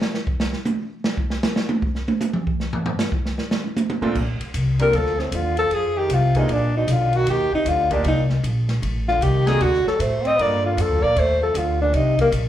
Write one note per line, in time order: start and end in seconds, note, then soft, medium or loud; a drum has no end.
0.01 snare loud
0.14 snare medium
0.27 kick medium
0.40 snare medium
0.53 snare soft
0.65 hi-hat pedal medium
0.65 high tom loud
1.04 snare loud
1.17 kick medium
1.30 snare medium
1.43 snare loud
1.43 hi-hat pedal medium
1.56 snare loud
1.69 high tom loud
1.82 kick medium
1.95 snare soft
2.08 high tom loud
2.21 hi-hat pedal medium
2.21 high tom loud
2.33 mid tom loud
2.47 kick medium
2.60 snare soft
2.73 floor tom loud
2.86 floor tom loud
2.99 snare loud
2.99 hi-hat pedal medium
3.12 kick medium
3.25 snare medium
3.38 snare medium
3.51 snare loud
3.64 high tom medium
3.77 hi-hat pedal medium
3.77 high tom loud
3.90 high tom loud
4.01 4.14 A#2 medium
4.01 4.14 A3 medium
4.01 4.15 C4 medium
4.01 4.15 D4 medium
4.01 4.15 F4 medium
4.01 muted upright bass stroke soft
4.01 high tom loud
4.15 4.39 A#1 medium
4.15 kick medium
4.15 crash medium
4.40 muted upright bass stroke soft
4.40 ride soft
4.54 4.92 C2 medium
4.54 kick soft
4.54 hi-hat pedal medium
4.54 ride medium
4.79 4.95 G3 medium
4.79 4.92 A#3 medium
4.79 4.92 C4 medium
4.79 4.92 D4 medium
4.79 4.93 F4 medium
4.79 4.93 A4 medium
4.79 4.97 A#4 medium
4.79 ride soft
4.93 5.31 D2 medium
4.93 5.20 F3 medium
4.93 5.21 A4 medium
4.93 kick soft
4.93 ride medium
5.06 snare soft
5.18 5.34 A2 soft
5.18 5.37 C4 medium
5.18 snare soft
5.32 5.70 D#2 medium
5.32 5.58 D3 medium
5.32 5.58 F4 medium
5.32 kick soft
5.32 hi-hat pedal soft
5.32 ride medium
5.57 5.72 F3 medium
5.57 5.75 A4 medium
5.57 ride soft
5.70 6.09 F2 medium
5.70 5.98 F3 medium
5.70 6.00 G#4 medium
5.70 kick soft
5.70 ride medium
5.97 6.13 D#3 medium
5.97 6.15 G4 medium
6.09 6.48 C2 medium
6.09 6.35 C3 medium
6.09 kick soft
6.09 hi-hat pedal medium
6.09 ride medium
6.14 6.37 F4 medium
6.35 6.52 C3 medium
6.35 6.48 A#3 medium
6.35 6.48 B3 medium
6.35 6.48 D4 medium
6.35 6.53 D#4 medium
6.35 6.48 F4 medium
6.35 6.49 G#4 medium
6.35 kick soft
6.35 ride soft
6.48 6.87 A#1 medium
6.48 6.75 A#2 medium
6.48 6.76 D4 medium
6.48 ride medium
6.75 6.91 B2 medium
6.75 6.94 D#4 medium
6.87 7.26 B1 medium
6.87 7.15 D3 medium
6.87 kick soft
6.87 hi-hat pedal medium
6.87 ride medium
6.92 7.17 F4 medium
7.13 7.28 D#3 medium
7.13 7.31 F#4 medium
7.13 ride soft
7.26 7.50 D#2 medium
7.26 7.52 D#3 medium
7.26 7.53 G4 medium
7.26 kick soft
7.26 ride medium
7.52 7.69 C3 medium
7.52 7.70 D#4 medium
7.52 muted upright bass stroke soft
7.65 8.03 D2 medium
7.65 7.90 D3 medium
7.65 7.92 F4 medium
7.65 kick soft
7.65 hi-hat pedal medium
7.65 ride medium
7.90 8.04 A#2 medium
7.90 8.03 A#3 medium
7.90 8.03 D4 medium
7.90 8.05 D4 medium
7.90 8.04 D#4 medium
7.90 8.04 F4 medium
7.90 8.04 G4 medium
7.90 kick medium
7.90 ride soft
8.04 8.42 C2 medium
8.04 8.28 A#2 medium
8.04 kick soft
8.04 ride medium
8.08 8.22 D#4 medium
8.29 snare soft
8.43 8.81 A#1 medium
8.43 kick soft
8.43 hi-hat pedal soft
8.43 ride medium
8.69 snare medium
8.69 ride soft
8.82 9.20 A1 medium
8.82 kick soft
8.82 ride medium
9.08 9.23 D3 medium
9.08 9.24 F4 medium
9.08 snare soft
9.21 9.59 C2 medium
9.21 9.47 D#3 medium
9.21 9.49 G4 medium
9.21 kick soft
9.21 hi-hat pedal medium
9.21 ride medium
9.46 9.63 D#3 medium
9.46 9.59 A#3 medium
9.46 9.59 C4 medium
9.46 9.59 D4 medium
9.46 9.59 F#4 medium
9.46 9.64 G#4 medium
9.46 9.60 A4 medium
9.46 snare medium
9.46 ride soft
9.60 9.83 D2 medium
9.60 9.84 D3 medium
9.60 9.86 F#4 medium
9.60 kick soft
9.60 ride medium
9.74 snare soft
9.85 10.01 F#3 medium
9.85 10.03 A4 medium
9.85 muted upright bass stroke soft
9.85 snare soft
9.99 10.37 A2 medium
9.99 10.25 A3 medium
9.99 10.29 C5 medium
9.99 kick soft
9.99 hi-hat pedal medium
9.99 ride medium
10.24 10.40 C4 medium
10.24 10.43 D#5 loud
10.24 ride soft
10.38 10.76 G2 medium
10.38 10.97 G3 medium
10.38 10.63 A#3 medium
10.38 10.97 A#3 medium
10.38 10.98 D4 medium
10.38 10.98 F4 medium
10.38 10.98 A4 medium
10.38 10.65 D5 medium
10.38 kick soft
10.38 ride medium
10.63 10.78 D3 medium
10.63 10.83 F4 medium
10.76 10.90 F2 medium
10.76 11.03 F3 medium
10.76 kick soft
10.76 hi-hat pedal medium
10.76 ride medium
10.81 11.05 A4 medium
10.90 11.02 D2 medium
11.02 11.15 A#1 medium
11.02 11.18 A#3 medium
11.02 11.21 D5 loud
11.16 11.53 D#2 medium
11.16 11.41 A3 medium
11.16 11.42 C5 medium
11.16 kick soft
11.16 ride medium
11.41 11.57 F3 medium
11.41 11.59 A4 medium
11.54 11.92 D2 medium
11.54 11.80 D3 medium
11.54 11.81 F4 medium
11.54 kick soft
11.54 hi-hat pedal medium
11.54 ride medium
11.81 11.96 A#2 medium
11.81 11.96 D4 medium
11.93 12.31 C2 medium
11.93 12.18 C3 medium
11.93 12.19 D#4 medium
11.93 kick soft
11.93 ride medium
12.18 12.32 G2 medium
12.18 12.29 A#3 medium
12.18 kick medium
12.18 ride soft
12.32 12.48 A#1 medium
12.32 hi-hat pedal medium
12.32 ride medium